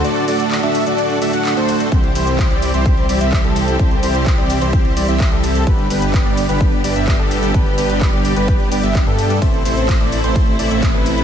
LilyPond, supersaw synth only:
\new Staff \with { instrumentName = "Supersaw synth" } { \time 4/4 \key g \major \tempo 4 = 128 <a d' fis' a' d''>8 <a d' fis' a' d''>8. <a d' fis' a' e''>8 <a d' fis' a' d''>8. <a d' fis' a' e''>16 <a d' fis' a' fis''>8 <a d' fis' a' c''>8. | <g c' e' g' c''>8 <g c' e' g' c''>8. <g c' e' g' d''>8 <g c' e' g' c''>8. <g c' e' g' d''>16 <g c' e' g' e''>8 <g c' e' g' a'>8. | <g c' e' g' c''>8 <g c' e' g' c''>8. <g c' e' g' d''>8 <g c' e' g' c''>8. <g c' e' g' d''>16 <g c' e' g' e''>8 <g c' e' g' a'>8. | <g b d' g' b'>8 <g b d' g' b'>8. <g b d' g' d''>8 <g b d' g' b'>8. <g b d' g' d''>16 <g b d' g' e''>8 <g b d' g' a'>8. |
<g b d' g' b'>8 <g b d' g' b'>8. <g b d' g' d''>8 <g b d' g' b'>8. <g b d' g' d''>16 <g b d' g' e''>8 <g b d' g' a'>8. | <a c' e' a' c''>8 <a c' e' a' c''>8. <a c' e' a' d''>8 <a c' e' a' c''>8. <a c' e' a' d''>16 <a c' e' a' e''>8 <a c' e' a' b'>8. | }